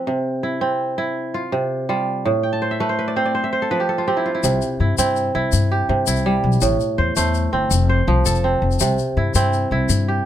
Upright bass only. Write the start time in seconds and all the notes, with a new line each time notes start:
4.44 C2
4.80 G2
4.98 G2
5.35 C2
5.53 G2
5.89 G2
6.07 C2
6.44 B1
6.62 A1
6.98 E2
7.17 E2
7.53 G1
7.71 F1
8.07 C2
8.25 F1
8.62 F1
8.81 C2
9.17 G2
9.35 G2
9.71 C2
9.89 G2